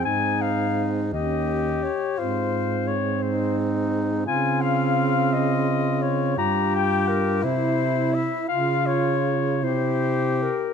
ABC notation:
X:1
M:6/8
L:1/8
Q:3/8=57
K:Dblyd
V:1 name="Clarinet"
a f z e2 d | c2 d c z2 | a f2 e2 d | b g B c2 =e |
f d2 c2 B |]
V:2 name="Tenor saxophone"
E3 G3 | F2 z E3 | F6 | G3 =E3 |
F2 z G3 |]
V:3 name="Alto saxophone"
C3 D2 z | C6 | C6 | F3 =E3 |
F3 =E2 z |]
V:4 name="Baritone saxophone" clef=bass
A,,3 E,,2 z | A,,6 | D,6 | G,,3 C,3 |
D,3 C,2 z |]